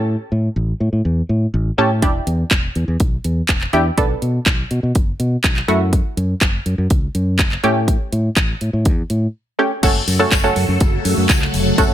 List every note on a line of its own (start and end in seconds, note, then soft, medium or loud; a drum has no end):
0.00 0.15 A2 medium
0.00 0.61 C#4 medium
0.00 0.61 G4 medium
0.00 0.61 A4 loud
0.32 0.48 A2 medium
0.56 0.72 A1 loud
0.80 0.88 A2 medium
0.93 1.01 A2 medium
1.05 1.21 E2 loud
1.29 1.45 A2 medium
1.54 1.70 A1 loud
1.78 2.04 A2 loud
1.78 1.91 C#4 medium
1.78 1.91 G4 medium
1.78 1.91 A4 medium
2.02 2.18 E1 loud
2.02 2.53 D4 medium
2.02 2.53 E4 medium
2.02 2.53 G4 medium
2.02 kick loud
2.02 closed hi-hat medium
2.27 2.43 E2 loud
2.27 closed hi-hat soft
2.51 2.67 E1 loud
2.51 kick loud
2.51 clap loud
2.51 closed hi-hat medium
2.75 2.84 E2 loud
2.75 closed hi-hat soft
2.88 2.96 E2 loud
3.00 3.16 B1 loud
3.00 kick loud
3.00 closed hi-hat medium
3.24 3.40 E2 loud
3.24 closed hi-hat soft
3.49 3.65 E1 loud
3.49 kick loud
3.49 clap loud
3.49 closed hi-hat medium
3.61 clap medium
3.73 3.89 E2 loud
3.73 3.86 D4 medium
3.73 3.86 E4 medium
3.73 3.86 G4 medium
3.73 closed hi-hat soft
3.97 4.13 B1 loud
3.97 4.48 B3 medium
3.97 4.48 D4 medium
3.97 4.48 A4 medium
3.97 kick loud
3.97 closed hi-hat medium
4.22 4.38 B2 medium
4.22 closed hi-hat soft
4.46 4.62 B1 loud
4.46 kick loud
4.46 clap loud
4.46 closed hi-hat medium
4.71 4.79 B2 medium
4.71 closed hi-hat soft
4.83 4.91 B2 medium
4.95 5.11 F#1 medium
4.95 kick loud
4.95 closed hi-hat medium
5.20 5.35 B2 loud
5.20 closed hi-hat soft
5.44 5.60 B1 loud
5.44 kick loud
5.44 clap loud
5.44 closed hi-hat medium
5.57 clap medium
5.68 6.00 F#2 medium
5.68 6.46 A3 medium
5.68 6.46 E4 medium
5.68 6.47 F#4 loud
5.68 closed hi-hat soft
5.93 kick loud
5.93 closed hi-hat medium
6.17 6.33 F#2 loud
6.17 closed hi-hat soft
6.41 6.57 F#1 loud
6.41 kick loud
6.41 clap loud
6.41 closed hi-hat medium
6.66 6.74 F#2 medium
6.66 closed hi-hat soft
6.78 6.86 F#2 medium
6.90 7.06 C#2 medium
6.90 kick loud
6.90 closed hi-hat medium
7.15 7.41 F#2 loud
7.15 closed hi-hat soft
7.39 7.55 F#1 loud
7.39 kick loud
7.39 clap loud
7.39 closed hi-hat medium
7.52 clap medium
7.63 7.95 A2 loud
7.63 8.42 A3 medium
7.63 8.42 C#4 medium
7.63 8.42 G4 loud
7.63 closed hi-hat soft
7.88 kick loud
7.88 closed hi-hat medium
8.12 8.28 A2 loud
8.12 closed hi-hat medium
8.37 8.52 A1 loud
8.37 kick loud
8.37 clap loud
8.37 closed hi-hat medium
8.61 8.69 A2 medium
8.61 closed hi-hat soft
8.73 8.87 A2 medium
8.85 9.02 E2 medium
8.85 kick loud
8.85 closed hi-hat medium
9.10 9.26 A2 medium
9.10 closed hi-hat soft
9.59 9.71 A3 medium
9.59 9.71 C#4 medium
9.59 9.72 G4 medium
9.83 9.99 F#1 loud
9.83 11.94 C#3 medium
9.83 11.94 F#3 medium
9.83 10.02 A3 medium
9.83 11.94 A3 medium
9.83 10.02 C#4 medium
9.83 11.94 F#4 medium
9.83 10.02 F#4 medium
9.83 11.94 A4 medium
9.83 10.02 A4 loud
9.83 kick loud
9.83 closed hi-hat medium
9.83 crash loud
9.83 tambourine medium
10.07 10.23 F#2 loud
10.07 open hi-hat medium
10.07 tambourine medium
10.19 10.32 A3 medium
10.19 10.32 C#4 medium
10.19 10.32 F#4 medium
10.19 10.32 A4 loud
10.32 10.48 F#1 loud
10.32 kick loud
10.32 clap loud
10.32 closed hi-hat medium
10.32 tambourine medium
10.44 10.94 A3 medium
10.44 10.94 C#4 medium
10.44 10.95 F#4 medium
10.44 10.95 A4 loud
10.56 10.64 F#2 loud
10.56 open hi-hat medium
10.56 tambourine soft
10.68 10.76 F#2 medium
10.80 10.97 F#1 loud
10.80 kick loud
10.80 closed hi-hat medium
10.80 tambourine soft
11.05 11.13 F#2 loud
11.05 open hi-hat medium
11.05 tambourine medium
11.17 11.25 F#2 loud
11.29 11.45 C#2 loud
11.29 kick loud
11.29 clap loud
11.29 closed hi-hat medium
11.29 tambourine medium
11.42 clap medium
11.54 11.70 F1 loud
11.54 open hi-hat medium
11.54 tambourine soft
11.78 11.94 F#1 loud
11.78 11.94 A3 medium
11.78 11.94 C#4 medium
11.78 11.94 F#4 medium
11.78 11.94 A4 loud
11.78 kick loud
11.78 closed hi-hat medium
11.78 tambourine medium